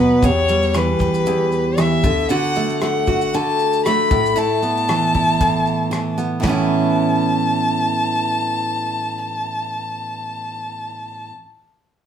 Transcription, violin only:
0.00 0.26 B4 medium
0.24 0.78 C#5 medium
0.77 1.81 B4 medium
1.80 2.30 E5 medium
2.31 2.78 F#5 medium
2.83 3.36 F#5 medium
3.35 3.85 A5 medium
3.86 4.39 B5 medium
4.38 6.19 A5 medium
6.44 11.30 A5 medium

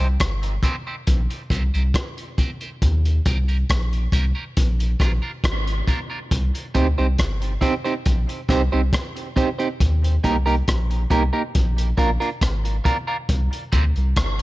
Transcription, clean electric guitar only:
0.63 0.75 C4 medium
0.63 0.75 D#4 medium
0.63 0.75 G4 medium
0.63 0.75 C5 loud
0.87 0.95 C4 soft
0.87 0.95 D#4 soft
0.87 0.95 G4 soft
0.87 0.95 C5 medium
1.50 1.62 C4 medium
1.50 1.62 D#4 medium
1.50 1.62 G4 medium
1.50 1.62 C5 medium
1.74 1.82 C4 medium
1.74 1.82 D#4 medium
1.74 1.82 G4 medium
1.74 1.82 C5 medium
2.38 2.49 C4 medium
2.38 2.50 D#4 medium
2.38 2.50 G4 medium
2.38 2.50 C5 medium
2.61 2.70 C4 medium
2.61 2.69 D#4 soft
2.61 2.69 G4 medium
2.61 2.69 C5 medium
3.26 3.37 A#3 medium
3.26 3.37 D#4 medium
3.26 3.37 G4 loud
3.26 3.37 A#4 loud
3.48 3.57 A#3 medium
3.48 3.57 D#4 medium
3.48 3.56 G4 soft
3.48 3.56 A#4 medium
4.13 4.24 A#3 medium
4.13 4.24 D#4 loud
4.13 4.24 G4 medium
4.13 4.24 A#4 loud
4.35 4.44 A#3 soft
4.35 4.44 D#4 medium
4.35 4.43 G4 medium
4.35 4.43 A#4 medium
5.00 5.11 A#3 medium
5.00 5.11 D4 medium
5.00 5.11 F4 medium
5.00 5.11 A#4 medium
5.22 5.31 A#3 soft
5.22 5.31 D4 soft
5.22 5.31 F4 medium
5.22 5.31 A#4 medium
5.87 5.99 A#3 medium
5.87 5.99 D4 medium
5.87 5.99 F4 medium
5.87 5.99 A#4 medium
6.10 6.19 A#3 soft
6.10 6.19 D4 medium
6.10 6.18 F4 medium
6.10 6.18 A#4 medium
6.75 6.86 C4 medium
6.75 6.86 D#4 medium
6.75 6.86 G4 medium
6.75 6.86 C5 medium
6.98 7.06 C4 soft
6.98 7.06 D#4 soft
6.98 7.06 G4 medium
6.98 7.06 C5 medium
7.61 7.73 C4 medium
7.61 7.73 D#4 medium
7.61 7.73 G4 medium
7.61 7.73 C5 medium
7.84 7.93 C4 soft
7.84 7.93 D#4 medium
7.84 7.93 G4 medium
7.84 7.93 C5 medium
8.49 8.60 C4 medium
8.49 8.61 D#4 medium
8.49 8.61 G4 medium
8.49 8.61 C5 loud
8.72 8.81 C4 medium
8.72 8.81 D#4 medium
8.72 8.80 G4 medium
8.72 8.80 C5 medium
9.36 9.48 C4 medium
9.36 9.48 D#4 medium
9.36 9.48 G4 medium
9.36 9.48 C5 medium
9.59 9.68 C4 soft
9.59 9.68 D#4 medium
9.59 9.67 G4 medium
9.59 9.67 C5 medium
10.24 10.35 A#3 medium
10.24 10.35 D#4 medium
10.24 10.35 G4 medium
10.24 10.35 A#4 medium
10.46 10.55 A#3 medium
10.46 10.55 D#4 medium
10.46 10.54 G4 medium
10.46 10.54 A#4 medium
11.10 11.22 A#3 medium
11.10 11.22 D#4 medium
11.10 11.22 G4 medium
11.10 11.22 A#4 loud
11.33 11.42 A#3 soft
11.33 11.42 D#4 medium
11.33 11.42 G4 medium
11.33 11.41 A#4 medium
11.97 12.09 A#3 medium
11.97 12.09 D4 medium
11.97 12.09 F4 medium
11.97 12.09 A#4 loud
12.20 12.29 A#3 soft
12.20 12.29 D4 medium
12.20 12.29 F4 medium
12.20 12.29 A#4 medium
12.84 12.96 A#3 medium
12.84 12.96 D4 medium
12.84 12.96 F4 medium
12.84 12.96 A#4 medium
13.07 13.16 A#3 soft
13.07 13.16 D4 soft
13.07 13.16 F4 medium
13.07 13.16 A#4 medium
13.72 13.83 C4 medium
13.72 13.83 D#4 loud
13.72 13.84 G4 medium
13.72 13.84 C5 medium

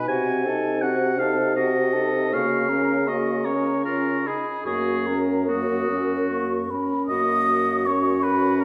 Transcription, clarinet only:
0.08 0.47 F#4 soft
0.46 0.84 A4 soft
0.82 1.21 F#4 soft
1.19 1.55 A4 soft
1.56 1.96 F#4 soft
1.94 2.32 A4 soft
2.33 2.72 F#4 soft
2.70 3.09 A#4 soft
3.08 3.48 F#4 soft
3.47 3.84 A#4 soft
3.85 4.27 F4 soft
4.26 4.65 G#4 soft
4.65 5.08 F#4 soft
5.07 5.50 A#4 soft
5.49 5.91 F#4 soft
5.89 6.29 A#4 soft
6.30 6.72 F#4 soft
6.71 7.10 A#4 soft
7.10 7.45 F#4 soft
7.49 7.86 F#4 soft
7.87 8.64 F#4 medium

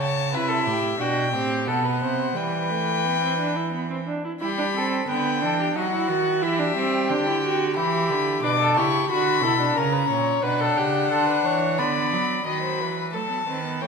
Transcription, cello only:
0.00 0.35 C#3 medium
0.33 0.68 C3 medium
0.67 0.99 A2 medium
1.00 1.35 B2 medium
1.33 1.69 A2 medium
1.67 2.03 B2 medium
2.02 2.35 C3 medium
2.36 4.04 E3 medium
4.42 5.05 G3 medium
5.09 5.44 D3 medium
5.42 5.75 E3 medium
5.76 6.11 F#3 medium
6.09 6.44 D#3 medium
6.43 6.75 E3 medium
6.76 7.11 G3 medium
7.10 7.78 D3 medium
7.76 8.11 E3 medium
8.09 8.42 D3 medium
8.43 8.78 B2 medium
8.76 9.09 C#3 medium
9.10 9.44 D3 medium
9.43 9.75 B2 medium
9.76 10.09 C#3 medium
10.10 10.43 A#2 medium
10.44 10.77 B2 medium
10.77 11.10 C#3 medium
11.11 11.44 D3 medium
11.45 11.80 E3 medium
11.79 12.14 D3 medium
12.12 12.46 F#3 medium
12.47 12.82 D#3 medium
12.80 13.15 E3 medium
13.14 13.47 F#3 medium
13.48 13.83 D#3 medium
13.82 13.87 E3 medium

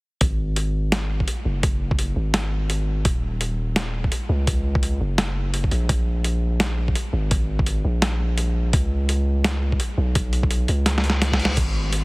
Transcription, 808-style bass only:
0.21 1.27 G#1 medium
1.45 2.15 F#1 medium
2.16 3.04 G#1 medium
3.05 4.11 D#1 medium
4.29 4.99 C#2 loud
5.01 5.71 F#1 loud
5.71 5.88 A#1 medium
5.89 6.95 A#1 loud
7.13 7.83 G#1 loud
7.85 8.72 A#1 medium
8.73 9.79 C#2 medium
9.98 10.67 B1 loud
10.69 11.56 C#2 medium
11.57 12.04 G#1 medium

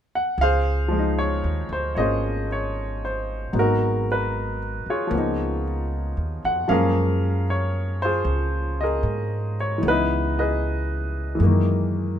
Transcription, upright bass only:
0.38 1.40 C#2 medium
1.44 1.68 D#2 medium
1.69 1.94 D2 medium
1.97 3.50 G#1 medium
3.53 4.82 G#1 medium
4.86 muted upright bass stroke soft
5.11 6.12 C#2 medium
6.17 6.41 D#2 medium
6.45 6.68 F2 medium
6.69 8.22 F#2 medium
8.25 9.00 C#2 medium
9.03 9.78 G#2 medium
9.83 11.36 C#2 medium
11.40 12.19 F#2 medium

